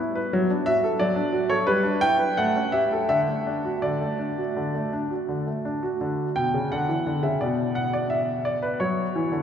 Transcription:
Already playing: E4
0.15 B4
0.33 F#3
0.50 D4
0.66 F#4 E5
0.84 A4
1.00 F#3 D5
1.16 D4
1.32 F#4
1.50 A4 C#5
1.67 G3 B4
1.83 D4
2.01 E4 G5
2.19 B4
2.37 A3 F#5
2.56 C#4
2.72 G4 E5
2.92 A4
3.09 D3 E5
3.28 A3
3.47 D4
3.65 F#4
3.82 D3 D5
4.01 A3
4.19 D4
4.38 F#4
4.56 D3
4.75 A3
4.93 D4
5.11 F#4
5.29 D3
5.47 A3
5.65 D4
5.83 F#4
6.01 D3 F#4
6.36 B2 G5
6.54 C#3
6.72 D3 F#5
6.88 E3
7.07 D3
7.23 C#3 E5
7.41 B2 F#4 D5
7.75 F#5
7.93 D5
8.10 E5
8.45 D5
8.62 B4
8.80 F#3 F#4 C#5
9.15 E3
9.32 D3

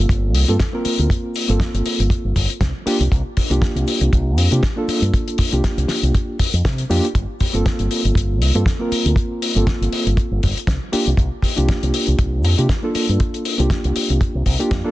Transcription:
Already playing: A#3 C4 F4 A4
0.09 kick, closed hi-hat, shaker
0.34 C2, open hi-hat, shaker
0.48 G2 A#3 C4 F4 A4, closed hi-hat, shaker
0.60 kick, snare, closed hi-hat, shaker
0.73 A#3 C4 F4 A#4
0.85 muted fingered electric bass stroke, open hi-hat, shaker
0.98 D2, closed hi-hat, shaker
1.10 kick, closed hi-hat, shaker
1.35 open hi-hat, shaker
1.48 G1 A#3 C4 F4 A4, closed hi-hat, shaker
1.60 kick, snare, closed hi-hat, shaker
1.74 G1, closed hi-hat
1.86 open hi-hat, shaker
1.99 G1, closed hi-hat, shaker
2.10 kick, closed hi-hat, shaker
2.24 G1
2.36 G1, kick, open hi-hat, shaker
2.50 closed hi-hat, shaker
2.61 C2, kick, snare, closed hi-hat, shaker
2.86 A#3 D4 F4 G4, muted fingered electric bass stroke, open hi-hat, shaker
3.00 C2, closed hi-hat, shaker
3.12 C2, kick, closed hi-hat, shaker
3.37 kick, open hi-hat, shaker
3.50 C2 A#3 D4 F4 G4, closed hi-hat, shaker
3.62 kick, snare, closed hi-hat, shaker
3.75 C2, closed hi-hat
3.88 open hi-hat, shaker
4.01 C2, closed hi-hat, shaker
4.13 C2, kick, closed hi-hat, shaker
4.37 F2, open hi-hat, shaker
4.51 C3 A#3 D4 F4 G4, closed hi-hat, shaker
4.63 kick, snare, closed hi-hat, shaker
4.76 A#3 D4 F4 A4
4.88 muted fingered electric bass stroke, open hi-hat, shaker
5.02 G2, closed hi-hat, shaker
5.14 kick, closed hi-hat, shaker
5.28 closed hi-hat
5.38 kick, open hi-hat, shaker
5.52 C2 A#3 D4 F4 G4, closed hi-hat, shaker
5.64 kick, snare, closed hi-hat, shaker
5.77 C2, closed hi-hat
5.88 snare, open hi-hat, shaker
6.03 C2, closed hi-hat, shaker
6.15 kick, closed hi-hat, shaker
6.39 kick, open hi-hat, shaker
6.53 F2, closed hi-hat, shaker
6.65 C3, kick, snare, closed hi-hat, shaker
6.78 closed hi-hat
6.90 F2 A#3 D4 F4 G4, open hi-hat, shaker
7.04 closed hi-hat, shaker
7.15 G1, kick, closed hi-hat, shaker
7.40 kick, open hi-hat, shaker
7.53 G1 A#3 C4 F4 A4, closed hi-hat, shaker
7.66 kick, snare, closed hi-hat, shaker
7.79 G1, closed hi-hat
7.91 open hi-hat, shaker
8.04 G1, closed hi-hat, shaker
8.15 G1, kick, closed hi-hat, shaker
8.41 C2, open hi-hat, shaker
8.55 G2 A#3 C4 F4 A4, closed hi-hat, shaker
8.66 kick, snare, closed hi-hat, shaker
8.79 A#3 C4 F4 A#4
8.91 muted fingered electric bass stroke, open hi-hat, shaker
9.05 D2, closed hi-hat, shaker
9.16 kick, closed hi-hat, shaker
9.42 open hi-hat, shaker
9.55 G1 A#3 C4 F4 A4, closed hi-hat, shaker
9.67 kick, snare, closed hi-hat, shaker
9.81 G1, closed hi-hat
9.93 open hi-hat, shaker
10.06 G1, closed hi-hat, shaker
10.17 kick, closed hi-hat, shaker
10.31 G1
10.43 G1, kick, open hi-hat, shaker
10.56 muted fingered electric bass stroke, closed hi-hat, shaker
10.67 C2, kick, snare, closed hi-hat, shaker
10.92 A#3 D4 F4 G4, muted fingered electric bass stroke, open hi-hat, shaker
11.07 C2, closed hi-hat, shaker
11.17 C2, kick, closed hi-hat, shaker
11.42 kick, open hi-hat, shaker
11.56 C2 A#3 D4 F4 G4, closed hi-hat, shaker
11.69 kick, snare, closed hi-hat, shaker
11.83 C2, closed hi-hat
11.94 open hi-hat, shaker
12.07 C2, closed hi-hat, shaker
12.19 kick, closed hi-hat, shaker
12.44 F2, open hi-hat, shaker
12.58 C3 A#3 D4 F4 G4, closed hi-hat, shaker
12.69 kick, snare, closed hi-hat, shaker
12.82 A#3 D4 F4 A4
12.95 muted fingered electric bass stroke, open hi-hat, shaker
13.09 G2, closed hi-hat, shaker
13.20 kick, closed hi-hat, shaker
13.34 closed hi-hat
13.45 open hi-hat, shaker
13.58 C2 A#3 D4 F4 G4, closed hi-hat, shaker
13.70 kick, snare, closed hi-hat, shaker
13.84 C2, closed hi-hat
13.96 open hi-hat, shaker
14.10 C2, closed hi-hat, shaker
14.21 kick, closed hi-hat, shaker
14.35 C2
14.46 C2, kick, open hi-hat, shaker
14.59 A#3 D4 F4 G4, closed hi-hat, shaker
14.71 F2, kick, snare, closed hi-hat, shaker
14.84 A#3 D4 F4 A4

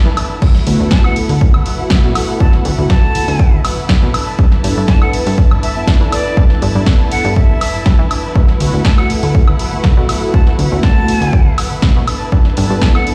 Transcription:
Already playing: E3 B3 D4 E4 A4 B4 A5
0.06 E3
0.17 E3 B3 D4 A4, open hi-hat, high woodblock
0.30 B3 D4 A4
0.42 D2 F#3 B3 E4 A4 B4 F#5, kick, crash
0.55 snare
0.67 D2 A3 B3 E4 F#4, open hi-hat
0.79 D2 A3 B3 E4 A4
0.91 F#3 B3 E4 A4 A5, kick, snare
1.04 A3 B3 E4 F#4 A4 F#5, high woodblock
1.16 D2 A3 B3 E4 A4, open hi-hat
1.29 D2 B3 E4 A4, open hi-hat
1.41 kick
1.54 B3 E4 A4, high woodblock
1.66 F#3 B3 E4 A4, open hi-hat
1.79 D2 A3 B3 E4 F#4
1.90 D2 F#3 B3 E4 A4, kick, snare
2.03 B2 A3 B3 E4 F#4
2.15 F#3 B3 E4 A4, open hi-hat, high woodblock
2.29 B3 E4 A4
2.40 D2 F#3 B3 E4 A4 A5, kick
2.53 D2, snare
2.65 D2 A3 B3 E4 F#4, open hi-hat
2.78 D2 A3 B3 E4 F#4 A4
2.90 F#3 B3 E4 A4 A5, kick, snare
3.03 A3 B3 E4 F#4 A4
3.15 D2 A3 B3 E4 F#4, open hi-hat
3.27 D2 B3 E4 A4, open hi-hat
3.39 kick
3.52 B3 E4 A4
3.64 F#3 B3 E4 A4, open hi-hat, high woodblock
3.77 D2 B3 E4 A4
3.89 D2 F#3 B3 E4 A4, kick, snare
4.03 B2
4.14 E3 B3 D4 A4 A5, open hi-hat, high woodblock
4.27 B3 D4 A4
4.39 G2 E3 B3 D4 A4, kick
4.52 snare
4.63 G2 B3 D4 E4 A4, open hi-hat
4.77 G2 B3 D4 E4 A4 B4
4.88 E3 B3 D4 A5, kick, snare
5.01 B3 D4 E4 A4 F#5, high woodblock
5.13 G2 B3 D4 E4 B4, open hi-hat
5.26 G2 B3 D4 A4, open hi-hat
5.38 kick
5.51 B3 D4 A4, high woodblock
5.62 E3 B3 D4 A4 E5, open hi-hat
5.76 G2 B3 D4 E4 A4 E5
5.87 G2 E3 B3 D4 A4, kick, snare
6.00 E3 B3 D4 E4 A4
6.12 E3 B3 D4 A4 D5, open hi-hat, high woodblock
6.25 B3 D4 A4
6.37 G2 E3 B3 D4 A4, kick
6.50 G2, snare
6.62 G2 B3 D4 E4 A4, open hi-hat
6.75 G2 B3 D4 E4 A4
6.86 E3 B3 D4 A4, kick, snare
7.00 B3 D4 E4 A4
7.11 G2 B3 D4 E4 A4 F#5, open hi-hat
7.25 G2 B3 D4 A4, open hi-hat
7.36 E5, kick
7.49 B3 D4 A4
7.61 E3 B3 D4 A4, open hi-hat, high woodblock
7.74 G2 B3 D4 A4
7.86 G2 E3 B3 D4 A4, kick, snare
7.99 E3
8.11 E3 B3 D4 A4, open hi-hat, high woodblock
8.24 B3 D4 A4
8.35 D2 F#3 B3 E4 A4 F#5, kick
8.48 snare
8.60 D2 A3 B3 E4 F#4, open hi-hat
8.73 D2 A3 B3 E4 A4
8.85 F#3 B3 E4 A4 A5, kick, snare
8.98 A3 B3 E4 F#4 A4 F#5, high woodblock
9.09 D2 A3 B3 E4 A4, open hi-hat
9.23 D2 B3 E4 A4, open hi-hat
9.35 kick
9.48 B3 E4 A4, high woodblock
9.59 F#3 B3 E4 A4, open hi-hat
9.72 D2 A3 B3 E4 F#4 A4
9.84 D2 F#3 B3 E4 A4, kick, snare
9.97 B2 A3 B3 E4 F#4
10.09 F#3 B3 E4 A4, open hi-hat, high woodblock
10.23 B3 E4 A4
10.34 D2 F#3 B3 E4 A4 A5, kick
10.47 D2, snare
10.58 D2 A3 B3 E4 F#4, open hi-hat
10.71 D2 A3 B3 E4 F#4 A4
10.83 F#3 B3 E4 A4 A5, kick, snare
10.96 A3 B3 E4 F#4 A4
11.07 D2 A3 B3 E4 F#4, open hi-hat
11.21 D2 B3 E4 A4, open hi-hat
11.33 kick
11.46 B3 E4 A4
11.57 F#3 B3 E4 A4, open hi-hat, high woodblock
11.71 D2 B3 E4 A4
11.82 D2 F#3 B3 E4 A4, kick, snare
11.96 B2
12.07 E3 B3 D4 A4 A5, open hi-hat, high woodblock
12.20 B3 D4 A4
12.32 G2 E3 B3 D4 A4, kick
12.45 snare
12.56 G2 B3 D4 E4 A4, open hi-hat
12.69 G2 B3 D4 E4 A4 B4
12.81 E3 B3 D4 A4 A5, kick, snare
12.94 B3 D4 E4 A4 F#5, high woodblock
13.06 G2 B3 D4 E4 B4, open hi-hat

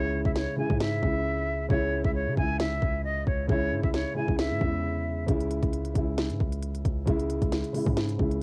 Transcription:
Already playing: C#2 C#3 G#3 E4 C#5
0.25 C#2 E5, kick
0.36 C#5, snare
0.56 C#3 G#3 G#5
0.60 E4
0.68 G#2 C#3 G#3, kick
0.73 E4
0.80 E5, snare
1.02 C#2 C#3 G#3, kick
1.06 E4
1.68 C#2 C#3 G#3 C#5, kick
1.73 E4
2.04 C#2 E5, kick
2.15 C#5
2.27 C#3
2.35 C#2 C#3 G#3 G#5, kick
2.39 E4
2.60 E5, snare
2.82 C#2, kick
3.04 D#5
3.27 C#2 C#5, kick
3.47 C#2 C#3 G#3 C#5, kick
3.52 E4
3.71 G#2
3.83 C#2 E5, kick
3.94 C#5, snare
4.14 C#3 G#3 G#5
4.18 E4
4.26 C#2 C#3 G#3, kick
4.30 E4
4.39 E5, snare
4.51 G#2
4.60 E2 C#3 G#3, kick
4.64 E4
5.26 C#2 C#3 G#3, kick, closed hi-hat
5.31 E4
5.40 closed hi-hat
5.51 closed hi-hat
5.63 C#2, kick, closed hi-hat
5.73 closed hi-hat
5.85 closed hi-hat
5.94 C#2 C#3 G#3, kick, closed hi-hat
5.98 E4
6.18 snare, closed hi-hat
6.30 G#2, closed hi-hat
6.40 C#2, kick
6.52 closed hi-hat
6.62 closed hi-hat
6.75 closed hi-hat
6.85 C#2, kick, closed hi-hat
7.05 C#2 C#3 G#3, kick, closed hi-hat
7.10 E4
7.19 closed hi-hat
7.30 closed hi-hat
7.42 C#2, kick, closed hi-hat
7.52 snare, closed hi-hat
7.64 closed hi-hat
7.73 C#3 G#3, open hi-hat
7.77 E4
7.85 G#2 C#3 G#3, kick
7.89 E4
7.97 snare, closed hi-hat
8.09 closed hi-hat
8.18 C#2 C#3 G#3, kick
8.22 E4
8.31 closed hi-hat

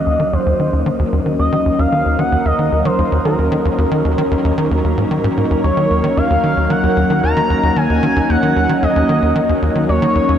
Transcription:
Already playing: F#3 A#3 C#4 D#4 A#4 D#5
0.06 D#2
0.20 D#3
0.33 D#2 C5
0.46 D#2
0.60 D#3
0.73 D#2
0.86 D#3
0.99 D#2
1.12 D#2
1.26 D#3
1.39 D#2 D#5
1.52 D#3
1.66 D#2
1.79 D#2 F5
1.92 D#3
2.06 D#2
2.19 D#3 F#5
2.32 D#2
2.45 D#2 D#5
2.59 D#3
2.72 D#2
2.85 D#3 C5
2.98 D#2
3.12 D#2
3.25 D#3 A#4
3.38 D#2
3.52 D#3
3.65 D#2
3.78 D#2
3.91 D#3
4.05 D#2
4.18 D#3
4.31 D#2
4.44 D#2
4.58 D#3
4.71 D#2
4.84 D#2
4.97 G#2
5.11 D#3
5.24 G#2
5.37 G#2
5.51 D#2
5.64 D#2 C#5
5.77 D#3
5.90 D#2
6.04 D#3
6.17 D#2 F5
6.30 D#2
6.43 D#3
6.57 D#2
6.70 D#3 F#5
6.83 D#2
6.97 D#2
7.10 D#3
7.23 D#2 A#5
7.37 D#3
7.50 D#2
7.63 D#2
7.76 D#3 G#5
7.90 D#2
8.03 D#3
8.16 D#2
8.29 D#2 F#5
8.43 D#3
8.56 D#2
8.69 D#3
8.82 D#2 D#5
8.96 D#2
9.09 D#3
9.22 D#2
9.35 D#3
9.49 D#2
9.62 D#2
9.75 D#3
9.89 D#2 C#5
10.02 D#3
10.15 D#2
10.29 D#2

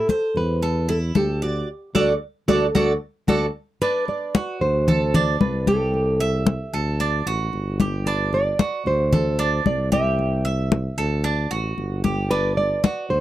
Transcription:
Already playing: A4
0.09 C5, high conga
0.35 E2 B4, high conga
0.62 A4, high conga
0.89 E4 A4, high conga
1.15 D2 G4 A4, high conga
1.42 F#4 D5
1.95 D2 F#4 A4 D5, high conga
2.48 D2 F#4 A4 D5, high conga
2.75 D2 F#4 A4 D5, high conga
3.28 D2 F#4 A4 D5, high conga
3.82 D4 B4, high conga
4.08 D5, high conga
4.35 F#4, high conga
4.61 D2 C5, high conga
4.88 A4, high conga, low conga
5.14 D4, high conga, low conga
5.40 C2 B4, high conga
5.67 G4 A4, high conga
5.94 high conga
6.20 E5, high conga
6.39 G4
6.47 high conga
6.73 D2 A4, high conga
7.00 D4, high conga
7.26 A1 F#4, high conga
7.53 G1, high conga
7.80 G4, high conga
8.06 D4 B4, high conga
8.33 D5, high conga
8.59 F#4, high conga
8.85 D2 C5, high conga
9.13 A4, high conga, low conga
9.39 D4, high conga
9.65 C2 D5, high conga
9.92 G4 E5, high conga
10.19 high conga
10.45 E5, high conga
10.72 high conga
10.98 D2 A4, high conga
11.24 D4, high conga
11.51 A1 F#4, high conga
11.77 G1, high conga
12.04 G4, high conga
12.31 D4 B4, high conga
12.57 D5, high conga
12.84 F#4, high conga
13.10 D2 C5, high conga

